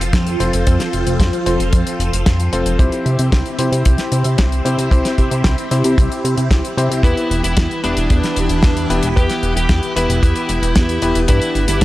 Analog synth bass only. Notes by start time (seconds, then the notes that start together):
0.00 F1
0.13 F2
0.40 F1
0.53 F1
0.67 F2
0.93 F1
1.07 F1
1.20 F2
1.46 F1
1.60 F1
1.73 F2
1.99 F1
2.13 F1
2.27 F2
2.52 F1
2.66 F1
2.79 C2
3.06 C3
3.19 C3
3.32 C2
3.59 C3
3.72 C3
3.86 C2
4.12 C3
4.25 C3
4.39 C2
4.65 C3
4.78 C3
4.91 C2
5.18 C3
5.31 C3
5.45 C2
5.71 C3
5.85 C3
5.98 C2
6.24 C3
6.38 C3
6.51 C2
6.77 C3
6.91 C3
7.03 E2
7.31 E1
7.44 E1
7.57 E2
7.84 E1
7.97 E1
8.10 E2
8.37 E1
8.50 E1
8.64 E2
8.90 E1
9.03 E1
9.17 E2
9.43 E1
9.56 E1
9.69 E2
9.96 E1
10.09 E1
10.23 E2
10.49 E1
10.62 E1
10.77 E2
11.02 E1
11.15 E1
11.29 G2
11.55 G1
11.69 G1
11.81 G2